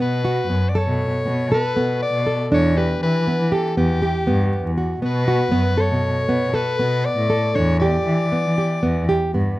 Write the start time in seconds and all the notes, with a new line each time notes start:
0.00 B2 B3 B4
0.25 F#4
0.49 F#2 B3
0.69 D5
0.75 A4 C#5
0.87 B2
1.26 B2 B3
1.52 A4 B4
1.76 B2 B3
2.02 D5
2.14 B2
2.27 A4
2.51 E2 D4 C#5
2.77 G4 B4
3.03 E3 B4
3.27 B3
3.39 E3
3.52 G4 A4
3.77 E2 B3 G4
4.02 G4
4.27 G2 B3
4.65 E2
4.78 F#4
5.02 B2 B3 B4
5.28 F#4
5.52 F#2 B3
5.78 A4 C#5
5.90 B2
6.28 B2 B3
6.54 A4 B4
6.79 B2 B3
7.05 D5
7.18 A2
7.30 A4
7.55 E2 D4 C#5
7.80 G4 D5
8.06 E3
8.32 B3
8.45 E3
8.58 G4
8.83 E2 B3
9.09 G4
9.34 G2 B3